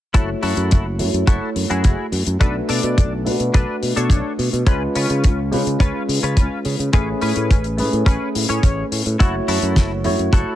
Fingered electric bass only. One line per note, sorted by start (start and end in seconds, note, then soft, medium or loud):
0.14 0.33 F#1 medium
0.43 0.52 F#2 medium
0.57 0.74 F#2 medium
0.72 1.01 F#1 medium
0.99 1.09 F#2 medium
1.14 1.23 F#2 medium
1.27 1.37 F#1 medium
1.56 1.65 F#2 medium
1.70 1.86 F#2 medium
1.85 1.94 F#1 medium
2.12 2.22 F#2 medium
2.27 2.36 F#2 medium
2.41 2.60 B1 medium
2.69 2.79 B2 medium
2.83 2.99 B2 medium
2.98 3.27 B1 medium
3.26 3.35 B2 medium
3.40 3.49 B2 medium
3.54 3.64 B1 medium
3.82 3.92 B2 medium
3.97 4.11 B2 medium
4.10 4.20 B1 medium
4.39 4.48 B2 medium
4.53 4.62 B2 medium
4.66 4.86 C#2 medium
4.96 5.05 C#3 medium
5.10 5.26 C#3 medium
5.24 5.54 C#2 medium
5.52 5.62 C#3 medium
5.67 5.76 C#3 medium
5.80 5.90 C#2 medium
6.09 6.18 C#3 medium
6.23 6.38 C#3 medium
6.37 6.46 C#2 medium
6.65 6.75 C#3 medium
6.79 6.89 C#3 medium
6.93 7.12 A1 medium
7.22 7.32 A2 medium
7.36 7.52 A2 medium
7.51 7.80 A1 medium
7.78 7.88 A2 medium
7.93 8.02 A2 medium
8.06 8.16 A1 medium
8.35 8.45 A2 medium
8.50 8.59 A2 medium
8.63 8.82 A1 medium
8.92 9.01 A2 medium
9.06 9.15 A2 medium
9.20 9.39 F#1 medium
9.48 9.58 F#2 medium
9.62 9.78 F#2 medium
9.76 10.06 F#1 medium
10.05 10.14 F#2 medium
10.19 10.28 F#2 medium
10.33 10.43 F#1 loud